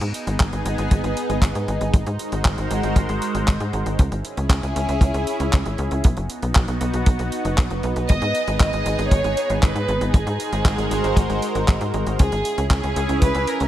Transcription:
Already playing: B3 D#4 G#4
0.01 G#2, closed hi-hat
0.14 closed hi-hat
0.27 G#1, closed hi-hat
0.40 G#1, kick, clap, closed hi-hat
0.53 G#1, closed hi-hat
0.66 G#1, closed hi-hat
0.78 G#1, closed hi-hat
0.91 G#1, kick, closed hi-hat
1.04 G#1, closed hi-hat
1.17 closed hi-hat
1.29 G#1, closed hi-hat
1.42 G#1, kick, clap, closed hi-hat
1.55 G#2, closed hi-hat
1.68 G#1, closed hi-hat
1.81 G#1, closed hi-hat
1.94 G#1 G#3 F#4 A#4 C5, kick, closed hi-hat
2.07 G#2, closed hi-hat
2.19 closed hi-hat
2.32 G#1, closed hi-hat
2.45 G#1, kick, clap, closed hi-hat
2.58 G#1, closed hi-hat
2.71 G#1, closed hi-hat
2.83 G#1, closed hi-hat
2.96 G#1, kick, closed hi-hat
3.09 G#1, closed hi-hat
3.22 closed hi-hat
3.35 G#1, closed hi-hat
3.48 G#1, kick, clap, closed hi-hat
3.60 G#2, closed hi-hat
3.73 G#1, closed hi-hat
3.86 G#1, closed hi-hat
3.99 C#2 C#4 E4 G#4, kick, closed hi-hat
4.12 G#1, closed hi-hat
4.25 closed hi-hat
4.37 C#2, closed hi-hat
4.49 C#2, kick, clap, closed hi-hat
4.63 C#2, closed hi-hat
4.76 C#2, closed hi-hat
4.89 C#2, closed hi-hat
5.01 C#2, kick, closed hi-hat
5.14 C#2, closed hi-hat
5.27 closed hi-hat
5.40 C#2, closed hi-hat
5.53 C#2, kick, clap, closed hi-hat
5.66 G#1, closed hi-hat
5.78 C#2, closed hi-hat
5.91 C#2, closed hi-hat
6.04 B1 B3 D#4 F#4, kick, closed hi-hat
6.17 F#1, closed hi-hat
6.30 closed hi-hat
6.42 B1, closed hi-hat
6.55 B1, kick, clap, closed hi-hat
6.68 B1, closed hi-hat
6.81 B1, closed hi-hat
6.94 B1, closed hi-hat
7.06 B1, kick, closed hi-hat
7.19 B1, closed hi-hat
7.32 closed hi-hat
7.45 F#1, closed hi-hat
7.58 B1, kick, clap, closed hi-hat
7.71 F#1, closed hi-hat
7.83 B1, closed hi-hat
7.96 B1, closed hi-hat
8.09 G#1 G#4 D#5, kick, closed hi-hat
8.22 G#2, closed hi-hat
8.35 closed hi-hat
8.48 G#1, closed hi-hat
8.60 G#1 D#5, kick, clap, closed hi-hat
8.73 G#1, closed hi-hat
8.86 G#1, closed hi-hat
8.99 G#1, closed hi-hat
9.11 G#1 C#5, kick, closed hi-hat
9.24 G#1, closed hi-hat
9.37 closed hi-hat
9.50 G#1, closed hi-hat
9.63 G#1 B4, kick, clap, closed hi-hat
9.75 G#2, closed hi-hat
9.88 G#1, closed hi-hat
10.01 G#1, closed hi-hat
10.14 G#1 G#3 F#4 G#4 A#4 C5, kick, closed hi-hat
10.27 G#2, closed hi-hat
10.40 closed hi-hat
10.52 G#1, closed hi-hat
10.65 G#1, kick, clap, closed hi-hat
10.78 G#1, closed hi-hat
10.91 G#1, closed hi-hat
11.04 G#1, closed hi-hat
11.16 G#1, kick, closed hi-hat
11.29 G#1, closed hi-hat
11.42 closed hi-hat
11.55 G#1, closed hi-hat
11.68 G#1, kick, clap, closed hi-hat
11.81 G#2, closed hi-hat
11.94 G#1, closed hi-hat
12.07 G#1, closed hi-hat
12.19 C#2 C#4 E4 G#4, kick, closed hi-hat, riser
12.32 G#1, closed hi-hat
12.45 closed hi-hat
12.58 C#2, closed hi-hat
12.70 C#2 G#4, kick, clap, closed hi-hat
12.84 C#2, closed hi-hat
12.96 C#2, closed hi-hat
13.09 C#2, closed hi-hat
13.22 C#2 B4, kick, closed hi-hat
13.35 C#2, closed hi-hat
13.47 A#4, closed hi-hat
13.60 C#2, closed hi-hat

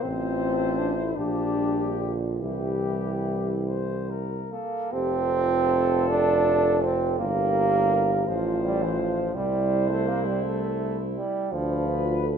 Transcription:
0.03 A1 A3 C4 F4 C5
0.78 D4
0.98 E4
1.16 A#1 F3 D4 F4 G4
1.56 G3
1.98 D3
2.39 C2 E3 G3 E4 G4
3.67 C5
4.09 A#4
4.52 A#3 A4
4.92 F1 C4 F4 G4 A4
5.31 F4
5.69 A4
6.08 D4 A4
6.83 C4
7.19 G1 A#3 E4 G4 A#4
8.27 A1 F3 F4 C5
8.64 G3
8.83 E3
8.99 F3
9.34 C2 G3 E4 C5
9.90 A3
10.07 A#3
10.26 G3
10.44 A3
11.17 G3
11.52 D2 F3 D4 F4 B4
11.87 F4
12.21 A4

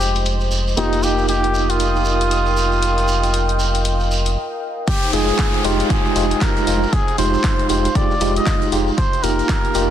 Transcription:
Already playing: F1 G#3 D#4 F4 G4 C5 D#5
0.01 shekere
0.15 closed hi-hat, shekere
0.25 closed hi-hat, shekere
0.40 shekere
0.51 shekere
0.67 shekere
0.77 F1 A#3 D#4 F4 G4 A#4 D#5 F5 G5 D#6, closed hi-hat, shekere
0.93 closed hi-hat, shekere
1.03 G4, shekere
1.18 shekere
1.28 G4, closed hi-hat, shekere
1.44 closed hi-hat
1.54 shekere
1.69 F4, closed hi-hat, shekere
1.80 closed hi-hat, shekere
1.96 shekere
2.05 shekere
2.21 closed hi-hat, shekere
2.31 closed hi-hat, shekere
2.46 shekere
2.57 shekere
2.72 shekere
2.82 closed hi-hat, shekere
2.98 closed hi-hat, shekere
3.08 shekere
3.24 closed hi-hat, shekere
3.33 closed hi-hat, shekere
3.49 closed hi-hat
3.59 shekere
3.75 closed hi-hat, shekere
3.85 closed hi-hat, shekere
4.00 shekere
4.11 shekere
4.26 closed hi-hat, shekere
4.88 D#4 G4 C5 G5, kick, closed hi-hat, crash, downlifter, shekere
5.03 closed hi-hat, shekere
5.13 F1 G#3 D#4 F4 G#4, closed hi-hat, open hi-hat, shekere
5.28 closed hi-hat, shekere
5.39 kick, snare, clap, closed hi-hat, shekere
5.54 closed hi-hat
5.64 F1 G#3 D#4 F4 G4, closed hi-hat, open hi-hat, shekere
5.80 closed hi-hat, shekere
5.90 G#3 D#4 F4 G4 G#4, kick, closed hi-hat, shekere
6.05 shekere
6.16 F1 G#3 D#4 F4 G4, closed hi-hat, open hi-hat, shekere
6.30 closed hi-hat, shekere
6.41 A#4, kick, snare, clap, closed hi-hat, shekere
6.57 closed hi-hat, shekere
6.67 F1 G#3 D#4 F4 G#4, closed hi-hat, open hi-hat, shekere
6.83 shekere
6.93 G#4 F5, kick, closed hi-hat, shekere
7.08 closed hi-hat, shekere
7.18 F1 G#3 D#4 F4 G4 C5, closed hi-hat, open hi-hat, shekere
7.34 shekere
7.44 kick, snare, clap, closed hi-hat
7.59 closed hi-hat
7.69 F1 G#3 D#4 F4 G4 C5, closed hi-hat, open hi-hat, shekere
7.85 closed hi-hat, shekere
7.95 G#3 D#4 F4 G4 D5, kick, closed hi-hat, shekere
8.11 shekere
8.21 F1 G#3 D#4 F4 G4, closed hi-hat, open hi-hat, shekere
8.36 D#5, closed hi-hat, shekere
8.46 kick, snare, clap, closed hi-hat, shekere
8.62 closed hi-hat, shekere
8.72 F1 G#3 D#4 F4 G4, closed hi-hat, open hi-hat, shekere
8.87 shekere
8.98 C5 F5 G5 A#5, kick, closed hi-hat, shekere
9.13 closed hi-hat, shekere
9.23 F1 A#3 D#4 F4 G4 A#4, closed hi-hat, open hi-hat, shekere
9.39 closed hi-hat, shekere
9.49 kick, snare, clap, closed hi-hat
9.65 closed hi-hat
9.75 F1 A#3 D#4 F4 G4, closed hi-hat, open hi-hat, shekere

